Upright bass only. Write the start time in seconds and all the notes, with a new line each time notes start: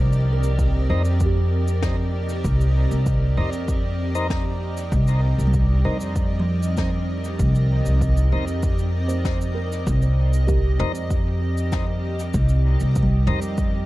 Already playing: C2
0.90 F2
2.44 C2
2.91 C2
3.37 F2
4.92 C2
5.38 C2
5.85 F2
7.39 C2
7.86 C2
8.32 F2
9.87 C2
10.79 F2
12.34 C2
12.81 C2
13.27 F2